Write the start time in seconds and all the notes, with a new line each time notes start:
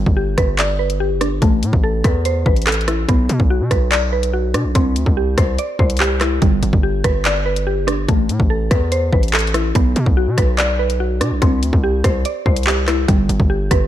Already playing: G3
0.06 G1, kick
0.17 G4
0.38 G1 B4, kick, cross-stick, closed hi-hat
0.59 D5, clap, closed hi-hat
0.79 B4
0.90 closed hi-hat
1.00 G4
1.10 F#1
1.21 D4, cross-stick, closed hi-hat
1.26 G1
1.42 A1 A3, kick, closed hi-hat
1.63 A2, closed hi-hat
1.73 A1, kick
1.83 A4
2.04 E2 B4, kick, cross-stick, closed hi-hat
2.25 C5, closed hi-hat
2.46 A1 B4, kick
2.56 closed hi-hat
2.62 closed hi-hat
2.67 A4, clap, closed hi-hat
2.72 closed hi-hat
2.74 closed hi-hat
2.81 closed hi-hat
2.88 E4, cross-stick, closed hi-hat
3.09 B1 B3, kick, closed hi-hat
3.29 B2, closed hi-hat
3.40 B1, kick
3.50 F#4
3.61 B2
3.71 B1 B4, kick, cross-stick, closed hi-hat
3.91 D5, clap, closed hi-hat
4.13 B4
4.23 closed hi-hat
4.33 F#4
4.54 B2 D4, cross-stick, closed hi-hat
4.65 B1
4.75 C2 C4, kick, closed hi-hat
4.96 D2, closed hi-hat
5.06 C2, kick
5.17 G4
5.38 C2 C5, kick, cross-stick, closed hi-hat
5.58 D5, closed hi-hat
5.79 C2 C5, kick
5.90 closed hi-hat
5.97 G4, clap, closed hi-hat
6.04 closed hi-hat
6.21 E4, cross-stick, clap, closed hi-hat
6.42 G1 G3, kick, closed hi-hat
6.63 G1, closed hi-hat
6.73 G1, kick
6.83 G4
7.04 G1 B4, kick, cross-stick, closed hi-hat
7.25 D5, clap, closed hi-hat
7.46 B4
7.56 closed hi-hat
7.67 G4
7.77 F#1
7.87 D4, cross-stick, closed hi-hat
7.93 G1
8.08 A1 A3, kick, closed hi-hat
8.29 A2, closed hi-hat
8.40 A1, kick
8.50 A4
8.71 E2 B4, kick, cross-stick, closed hi-hat
8.92 C5, closed hi-hat
9.13 A1 B4, kick
9.23 closed hi-hat
9.28 closed hi-hat
9.33 A4, clap, closed hi-hat
9.39 closed hi-hat
9.40 closed hi-hat
9.47 closed hi-hat
9.54 E4, cross-stick, closed hi-hat
9.75 B1 B3, kick, closed hi-hat
9.96 B2, closed hi-hat
10.06 B1, kick
10.17 F#4
10.27 B2
10.38 B1 B4, kick, cross-stick, closed hi-hat
10.58 D5, clap, closed hi-hat
10.79 B4
10.90 closed hi-hat
11.00 F#4
11.21 B2 D4, cross-stick, closed hi-hat
11.31 B1
11.42 C2 C4, kick, closed hi-hat
11.63 D2, closed hi-hat
11.73 C2, kick
11.84 G4
12.04 C2 C5, kick, cross-stick, closed hi-hat
12.25 D5, closed hi-hat
12.46 C2 C5, kick
12.56 closed hi-hat
12.63 G4, clap, closed hi-hat
12.70 closed hi-hat
12.88 E4, cross-stick, clap, closed hi-hat
13.08 G1 G3, kick, closed hi-hat
13.29 G1, closed hi-hat
13.40 G1, kick
13.50 G4
13.71 G1 B4, kick, cross-stick, closed hi-hat